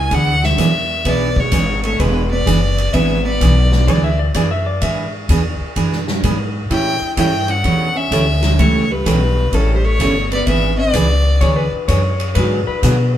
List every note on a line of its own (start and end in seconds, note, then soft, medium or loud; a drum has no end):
0.00 0.13 E4 medium
0.00 0.15 G#5 medium
0.11 0.57 D2 medium
0.11 0.34 E3 medium
0.11 0.34 B3 medium
0.11 0.34 D4 medium
0.11 0.44 D4 medium
0.11 0.34 G#4 medium
0.11 0.46 F#5 loud
0.11 kick soft
0.11 ride medium
0.43 1.04 B3 medium
0.43 1.09 E5 loud
0.43 snare soft
0.58 1.04 E2 loud
0.58 0.70 E3 medium
0.58 0.70 B3 medium
0.58 0.71 D4 medium
0.58 0.71 G#4 medium
0.58 kick soft
0.58 hi-hat pedal medium
0.58 ride medium
1.05 1.51 B1 medium
1.05 1.28 E3 medium
1.05 1.37 B3 medium
1.05 1.28 B3 medium
1.05 1.28 D4 medium
1.05 1.28 G#4 medium
1.05 1.41 D5 medium
1.05 kick soft
1.05 ride medium
1.36 1.84 G#3 medium
1.36 1.84 C#5 loud
1.36 kick medium
1.51 1.98 G#1 loud
1.51 1.64 E3 medium
1.51 1.64 B3 medium
1.51 1.65 D4 medium
1.51 1.64 G#4 medium
1.51 kick soft
1.51 hi-hat pedal medium
1.51 ride medium
1.83 2.00 A3 medium
1.83 2.01 C#5 medium
1.83 ride soft
1.99 2.45 E1 medium
1.99 2.22 E3 medium
1.99 2.31 G#3 medium
1.99 2.22 B3 medium
1.99 2.22 D4 medium
1.99 2.22 G#4 medium
1.99 2.30 B4 medium
1.99 kick soft
1.99 ride medium
2.30 2.90 B3 medium
2.30 2.95 D5 loud
2.46 2.92 F#1 medium
2.46 2.58 E3 medium
2.46 2.58 B3 medium
2.46 2.59 D4 medium
2.46 2.58 G#4 medium
2.46 kick soft
2.46 hi-hat pedal medium
2.46 ride medium
2.78 ride medium
2.93 3.39 G#1 medium
2.93 3.16 E3 medium
2.93 3.24 B3 medium
2.93 3.16 B3 medium
2.93 3.17 D4 medium
2.93 3.17 G#4 medium
2.93 3.24 E5 medium
2.93 kick soft
2.93 ride medium
3.24 4.15 B3 medium
3.24 4.15 D5 loud
3.41 3.86 B1 loud
3.41 3.53 E3 medium
3.41 3.53 B3 medium
3.41 3.53 D4 medium
3.41 3.53 G#4 medium
3.41 kick soft
3.41 hi-hat pedal medium
3.41 ride medium
3.72 snare soft
3.88 4.33 D2 medium
3.88 4.10 E3 medium
3.88 4.11 B3 medium
3.88 4.11 D4 medium
3.88 4.11 G#4 medium
3.88 4.03 D5 loud
3.88 kick soft
3.88 ride medium
4.04 4.19 E5 medium
4.19 4.34 D5 medium
4.34 4.80 F#2 medium
4.34 4.47 E3 medium
4.34 4.47 B3 medium
4.34 4.47 D4 medium
4.34 4.47 G#4 medium
4.34 4.50 D5 medium
4.34 kick soft
4.34 hi-hat pedal medium
4.34 ride medium
4.51 4.66 E5 medium
4.66 4.81 D5 medium
4.81 5.28 G#2 medium
4.81 5.04 E3 medium
4.81 5.04 B3 medium
4.81 5.04 D4 medium
4.81 5.05 G#4 medium
4.81 5.12 E5 medium
4.81 kick soft
4.81 ride medium
5.29 5.58 E2 medium
5.29 5.41 E3 medium
5.29 5.42 B3 medium
5.29 5.41 D4 medium
5.29 5.42 G#4 medium
5.29 kick soft
5.29 hi-hat pedal medium
5.29 ride medium
5.60 muted upright bass stroke soft
5.76 6.22 F#2 medium
5.76 5.98 E3 medium
5.76 5.99 B3 medium
5.76 5.99 D4 medium
5.76 5.99 G#4 medium
5.76 kick soft
5.76 ride medium
5.93 snare soft
6.08 snare medium
6.23 6.69 G#2 medium
6.23 6.35 E3 medium
6.23 6.36 B3 medium
6.23 6.36 D4 medium
6.23 6.36 G#4 medium
6.23 kick soft
6.23 hi-hat pedal medium
6.23 ride medium
6.70 7.00 A2 medium
6.70 6.93 E3 medium
6.70 6.93 G3 medium
6.70 6.93 C#4 medium
6.70 7.14 E4 medium
6.70 6.93 E4 medium
6.70 6.93 A4 medium
6.70 7.14 G5 loud
6.70 kick soft
6.70 ride medium
7.01 muted upright bass stroke soft
7.17 7.63 G2 loud
7.17 7.30 E3 medium
7.17 7.30 G3 medium
7.17 7.30 C#4 medium
7.17 7.48 E4 medium
7.17 7.30 E4 medium
7.17 7.30 A4 medium
7.17 7.52 G5 medium
7.17 kick soft
7.17 hi-hat pedal medium
7.17 ride medium
7.48 7.94 C#4 medium
7.48 7.98 F#5 medium
7.48 ride soft
7.64 8.10 E2 medium
7.64 7.87 E3 medium
7.64 7.87 G3 soft
7.64 7.87 C#4 medium
7.64 7.87 E4 medium
7.64 7.87 A4 medium
7.64 kick soft
7.64 ride medium
7.96 8.59 C#4 medium
7.96 8.61 E5 loud
8.11 8.57 D2 medium
8.11 8.23 E3 medium
8.11 8.24 G3 medium
8.11 8.24 C#4 medium
8.11 8.24 E4 medium
8.11 8.24 A4 medium
8.11 kick soft
8.11 hi-hat pedal medium
8.11 ride medium
8.42 snare medium
8.42 ride soft
8.58 9.04 C#2 medium
8.58 8.81 E3 medium
8.58 8.81 G3 medium
8.58 8.90 A3 medium
8.58 8.81 C#4 medium
8.58 8.81 E4 medium
8.58 8.81 A4 medium
8.58 8.93 C#5 medium
8.58 kick soft
8.58 ride medium
8.90 9.53 G3 medium
8.90 9.56 B4 medium
9.05 9.52 B1 medium
9.05 9.18 E3 medium
9.05 9.18 G3 medium
9.05 9.18 C#4 medium
9.05 9.18 E4 medium
9.05 9.18 A4 medium
9.05 kick soft
9.05 hi-hat pedal medium
9.05 ride medium
9.52 9.98 A1 medium
9.52 9.76 E3 medium
9.52 9.75 E3 medium
9.52 9.76 G3 medium
9.52 9.76 C#4 medium
9.52 9.76 E4 medium
9.52 9.76 A4 medium
9.52 9.75 A4 medium
9.52 kick soft
9.52 ride medium
9.75 9.84 G3 medium
9.75 9.86 C5 medium
9.84 10.32 A3 medium
9.84 10.32 C#5 loud
10.00 10.46 G1 loud
10.00 10.12 E3 medium
10.00 10.12 G3 medium
10.00 10.12 C#4 medium
10.00 10.13 E4 medium
10.00 10.13 A4 medium
10.00 kick soft
10.00 hi-hat pedal medium
10.00 ride medium
10.32 10.46 B3 medium
10.32 10.47 D5 medium
10.32 ride medium
10.47 10.93 G#1 medium
10.47 10.70 E3 medium
10.47 10.76 B3 medium
10.47 10.70 B3 medium
10.47 10.70 D4 medium
10.47 10.70 G#4 medium
10.47 10.76 E5 medium
10.47 kick soft
10.47 ride medium
10.78 11.69 B3 medium
10.78 11.69 D5 loud
10.93 11.40 C#2 medium
10.93 11.06 E3 medium
10.93 11.06 B3 medium
10.93 11.06 D4 medium
10.93 11.07 G#4 medium
10.93 kick soft
10.93 hi-hat pedal medium
10.93 ride medium
11.41 11.70 D2 medium
11.41 11.64 E3 medium
11.41 11.64 B3 medium
11.41 11.65 D4 medium
11.41 11.65 G#4 medium
11.41 11.56 C#5 loud
11.41 kick soft
11.41 ride medium
11.56 11.87 B4 medium
11.72 muted upright bass stroke soft
11.88 12.34 F#2 loud
11.88 12.01 E3 medium
11.88 12.01 B3 medium
11.88 12.01 D4 medium
11.88 12.01 G#4 medium
11.88 12.34 C#5 medium
11.88 kick soft
11.88 hi-hat pedal soft
11.88 ride medium
12.20 ride medium
12.35 12.65 G#2 medium
12.35 12.58 D3 medium
12.35 12.59 F#3 medium
12.35 12.59 B3 medium
12.35 12.59 F#4 medium
12.35 12.59 G#4 medium
12.35 12.66 B4 medium
12.35 kick soft
12.35 ride medium
12.67 13.18 B4 medium
12.67 muted upright bass stroke soft
12.83 13.18 B2 loud
12.83 12.95 D3 medium
12.83 12.95 F#3 medium
12.83 12.95 B3 medium
12.83 12.95 F#4 medium
12.83 12.95 G#4 medium
12.83 kick soft
12.83 hi-hat pedal medium
12.83 ride medium